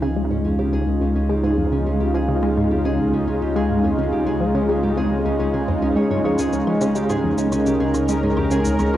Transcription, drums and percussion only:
0, 0, Header, 1, 2, 480
1, 0, Start_track
1, 0, Tempo, 566038
1, 1577, Time_signature, 4, 2, 24, 8
1, 7607, End_track
2, 0, Start_track
2, 0, Title_t, "Drums"
2, 5416, Note_on_c, 9, 82, 66
2, 5500, Note_off_c, 9, 82, 0
2, 5537, Note_on_c, 9, 82, 36
2, 5621, Note_off_c, 9, 82, 0
2, 5657, Note_on_c, 9, 77, 44
2, 5741, Note_off_c, 9, 77, 0
2, 5776, Note_on_c, 9, 82, 49
2, 5861, Note_off_c, 9, 82, 0
2, 5896, Note_on_c, 9, 82, 63
2, 5981, Note_off_c, 9, 82, 0
2, 6017, Note_on_c, 9, 77, 46
2, 6017, Note_on_c, 9, 82, 38
2, 6102, Note_off_c, 9, 77, 0
2, 6102, Note_off_c, 9, 82, 0
2, 6258, Note_on_c, 9, 82, 50
2, 6343, Note_off_c, 9, 82, 0
2, 6379, Note_on_c, 9, 77, 42
2, 6379, Note_on_c, 9, 82, 68
2, 6463, Note_off_c, 9, 77, 0
2, 6463, Note_off_c, 9, 82, 0
2, 6498, Note_on_c, 9, 82, 34
2, 6583, Note_off_c, 9, 82, 0
2, 6736, Note_on_c, 9, 77, 43
2, 6736, Note_on_c, 9, 82, 50
2, 6821, Note_off_c, 9, 77, 0
2, 6821, Note_off_c, 9, 82, 0
2, 6857, Note_on_c, 9, 82, 65
2, 6942, Note_off_c, 9, 82, 0
2, 7096, Note_on_c, 9, 77, 43
2, 7181, Note_off_c, 9, 77, 0
2, 7217, Note_on_c, 9, 82, 51
2, 7302, Note_off_c, 9, 82, 0
2, 7335, Note_on_c, 9, 82, 68
2, 7420, Note_off_c, 9, 82, 0
2, 7456, Note_on_c, 9, 77, 41
2, 7456, Note_on_c, 9, 82, 35
2, 7540, Note_off_c, 9, 77, 0
2, 7540, Note_off_c, 9, 82, 0
2, 7607, End_track
0, 0, End_of_file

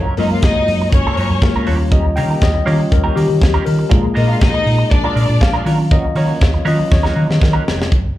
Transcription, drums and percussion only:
0, 0, Header, 1, 2, 480
1, 0, Start_track
1, 0, Tempo, 498753
1, 1851, Time_signature, 4, 2, 24, 8
1, 7874, End_track
2, 0, Start_track
2, 0, Title_t, "Drums"
2, 166, Note_on_c, 9, 46, 70
2, 262, Note_off_c, 9, 46, 0
2, 406, Note_on_c, 9, 42, 59
2, 411, Note_on_c, 9, 36, 118
2, 420, Note_on_c, 9, 38, 112
2, 503, Note_off_c, 9, 42, 0
2, 507, Note_off_c, 9, 36, 0
2, 516, Note_off_c, 9, 38, 0
2, 655, Note_on_c, 9, 46, 78
2, 751, Note_off_c, 9, 46, 0
2, 890, Note_on_c, 9, 36, 109
2, 892, Note_on_c, 9, 42, 65
2, 986, Note_off_c, 9, 36, 0
2, 989, Note_off_c, 9, 42, 0
2, 1128, Note_on_c, 9, 46, 60
2, 1224, Note_off_c, 9, 46, 0
2, 1366, Note_on_c, 9, 36, 107
2, 1367, Note_on_c, 9, 42, 52
2, 1380, Note_on_c, 9, 38, 110
2, 1462, Note_off_c, 9, 36, 0
2, 1463, Note_off_c, 9, 42, 0
2, 1476, Note_off_c, 9, 38, 0
2, 1603, Note_on_c, 9, 46, 71
2, 1700, Note_off_c, 9, 46, 0
2, 1844, Note_on_c, 9, 42, 67
2, 1845, Note_on_c, 9, 36, 119
2, 1940, Note_off_c, 9, 42, 0
2, 1941, Note_off_c, 9, 36, 0
2, 2085, Note_on_c, 9, 46, 69
2, 2181, Note_off_c, 9, 46, 0
2, 2324, Note_on_c, 9, 42, 69
2, 2327, Note_on_c, 9, 36, 102
2, 2337, Note_on_c, 9, 38, 108
2, 2420, Note_off_c, 9, 42, 0
2, 2423, Note_off_c, 9, 36, 0
2, 2433, Note_off_c, 9, 38, 0
2, 2574, Note_on_c, 9, 46, 71
2, 2670, Note_off_c, 9, 46, 0
2, 2810, Note_on_c, 9, 36, 106
2, 2817, Note_on_c, 9, 42, 72
2, 2906, Note_off_c, 9, 36, 0
2, 2913, Note_off_c, 9, 42, 0
2, 3053, Note_on_c, 9, 46, 67
2, 3150, Note_off_c, 9, 46, 0
2, 3287, Note_on_c, 9, 36, 96
2, 3291, Note_on_c, 9, 42, 54
2, 3304, Note_on_c, 9, 38, 101
2, 3383, Note_off_c, 9, 36, 0
2, 3387, Note_off_c, 9, 42, 0
2, 3400, Note_off_c, 9, 38, 0
2, 3526, Note_on_c, 9, 46, 66
2, 3622, Note_off_c, 9, 46, 0
2, 3766, Note_on_c, 9, 42, 63
2, 3767, Note_on_c, 9, 36, 125
2, 3863, Note_off_c, 9, 36, 0
2, 3863, Note_off_c, 9, 42, 0
2, 4009, Note_on_c, 9, 46, 76
2, 4105, Note_off_c, 9, 46, 0
2, 4246, Note_on_c, 9, 42, 62
2, 4249, Note_on_c, 9, 36, 111
2, 4260, Note_on_c, 9, 38, 117
2, 4342, Note_off_c, 9, 42, 0
2, 4345, Note_off_c, 9, 36, 0
2, 4356, Note_off_c, 9, 38, 0
2, 4496, Note_on_c, 9, 46, 73
2, 4592, Note_off_c, 9, 46, 0
2, 4730, Note_on_c, 9, 36, 96
2, 4734, Note_on_c, 9, 42, 78
2, 4826, Note_off_c, 9, 36, 0
2, 4831, Note_off_c, 9, 42, 0
2, 4973, Note_on_c, 9, 46, 68
2, 5070, Note_off_c, 9, 46, 0
2, 5208, Note_on_c, 9, 36, 96
2, 5211, Note_on_c, 9, 42, 51
2, 5224, Note_on_c, 9, 38, 114
2, 5304, Note_off_c, 9, 36, 0
2, 5307, Note_off_c, 9, 42, 0
2, 5320, Note_off_c, 9, 38, 0
2, 5451, Note_on_c, 9, 46, 70
2, 5548, Note_off_c, 9, 46, 0
2, 5690, Note_on_c, 9, 36, 127
2, 5691, Note_on_c, 9, 42, 65
2, 5786, Note_off_c, 9, 36, 0
2, 5787, Note_off_c, 9, 42, 0
2, 5924, Note_on_c, 9, 46, 74
2, 6020, Note_off_c, 9, 46, 0
2, 6170, Note_on_c, 9, 42, 69
2, 6174, Note_on_c, 9, 36, 117
2, 6184, Note_on_c, 9, 38, 105
2, 6266, Note_off_c, 9, 42, 0
2, 6270, Note_off_c, 9, 36, 0
2, 6280, Note_off_c, 9, 38, 0
2, 6416, Note_on_c, 9, 46, 73
2, 6512, Note_off_c, 9, 46, 0
2, 6656, Note_on_c, 9, 36, 112
2, 6663, Note_on_c, 9, 38, 57
2, 6752, Note_off_c, 9, 36, 0
2, 6760, Note_off_c, 9, 38, 0
2, 6788, Note_on_c, 9, 38, 51
2, 6885, Note_off_c, 9, 38, 0
2, 7031, Note_on_c, 9, 38, 69
2, 7127, Note_off_c, 9, 38, 0
2, 7136, Note_on_c, 9, 36, 102
2, 7150, Note_on_c, 9, 38, 77
2, 7232, Note_off_c, 9, 36, 0
2, 7246, Note_off_c, 9, 38, 0
2, 7392, Note_on_c, 9, 38, 99
2, 7488, Note_off_c, 9, 38, 0
2, 7522, Note_on_c, 9, 38, 95
2, 7618, Note_off_c, 9, 38, 0
2, 7621, Note_on_c, 9, 36, 112
2, 7624, Note_on_c, 9, 42, 56
2, 7718, Note_off_c, 9, 36, 0
2, 7720, Note_off_c, 9, 42, 0
2, 7874, End_track
0, 0, End_of_file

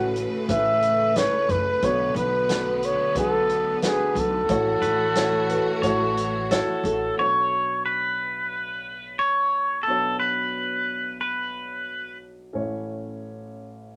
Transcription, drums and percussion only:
0, 0, Header, 1, 2, 480
1, 0, Start_track
1, 0, Tempo, 669643
1, 1307, Time_signature, 4, 2, 24, 8
1, 10007, End_track
2, 0, Start_track
2, 0, Title_t, "Drums"
2, 113, Note_on_c, 9, 42, 51
2, 185, Note_off_c, 9, 42, 0
2, 350, Note_on_c, 9, 42, 63
2, 354, Note_on_c, 9, 36, 66
2, 422, Note_off_c, 9, 42, 0
2, 425, Note_off_c, 9, 36, 0
2, 591, Note_on_c, 9, 42, 47
2, 662, Note_off_c, 9, 42, 0
2, 829, Note_on_c, 9, 42, 63
2, 833, Note_on_c, 9, 38, 87
2, 900, Note_off_c, 9, 42, 0
2, 905, Note_off_c, 9, 38, 0
2, 1070, Note_on_c, 9, 36, 59
2, 1070, Note_on_c, 9, 42, 44
2, 1142, Note_off_c, 9, 36, 0
2, 1142, Note_off_c, 9, 42, 0
2, 1308, Note_on_c, 9, 42, 57
2, 1309, Note_on_c, 9, 36, 77
2, 1380, Note_off_c, 9, 42, 0
2, 1381, Note_off_c, 9, 36, 0
2, 1549, Note_on_c, 9, 42, 44
2, 1620, Note_off_c, 9, 42, 0
2, 1785, Note_on_c, 9, 42, 64
2, 1790, Note_on_c, 9, 38, 89
2, 1857, Note_off_c, 9, 42, 0
2, 1861, Note_off_c, 9, 38, 0
2, 2026, Note_on_c, 9, 42, 50
2, 2098, Note_off_c, 9, 42, 0
2, 2261, Note_on_c, 9, 42, 60
2, 2263, Note_on_c, 9, 36, 66
2, 2333, Note_off_c, 9, 42, 0
2, 2335, Note_off_c, 9, 36, 0
2, 2505, Note_on_c, 9, 42, 50
2, 2577, Note_off_c, 9, 42, 0
2, 2740, Note_on_c, 9, 42, 65
2, 2745, Note_on_c, 9, 38, 86
2, 2812, Note_off_c, 9, 42, 0
2, 2816, Note_off_c, 9, 38, 0
2, 2980, Note_on_c, 9, 36, 59
2, 2983, Note_on_c, 9, 42, 48
2, 3052, Note_off_c, 9, 36, 0
2, 3055, Note_off_c, 9, 42, 0
2, 3217, Note_on_c, 9, 42, 63
2, 3219, Note_on_c, 9, 36, 84
2, 3289, Note_off_c, 9, 42, 0
2, 3290, Note_off_c, 9, 36, 0
2, 3457, Note_on_c, 9, 42, 51
2, 3529, Note_off_c, 9, 42, 0
2, 3694, Note_on_c, 9, 42, 66
2, 3698, Note_on_c, 9, 38, 90
2, 3766, Note_off_c, 9, 42, 0
2, 3770, Note_off_c, 9, 38, 0
2, 3939, Note_on_c, 9, 42, 50
2, 4010, Note_off_c, 9, 42, 0
2, 4180, Note_on_c, 9, 36, 61
2, 4180, Note_on_c, 9, 42, 66
2, 4251, Note_off_c, 9, 36, 0
2, 4252, Note_off_c, 9, 42, 0
2, 4425, Note_on_c, 9, 42, 51
2, 4496, Note_off_c, 9, 42, 0
2, 4665, Note_on_c, 9, 42, 63
2, 4669, Note_on_c, 9, 38, 84
2, 4737, Note_off_c, 9, 42, 0
2, 4741, Note_off_c, 9, 38, 0
2, 4908, Note_on_c, 9, 42, 45
2, 4980, Note_off_c, 9, 42, 0
2, 10007, End_track
0, 0, End_of_file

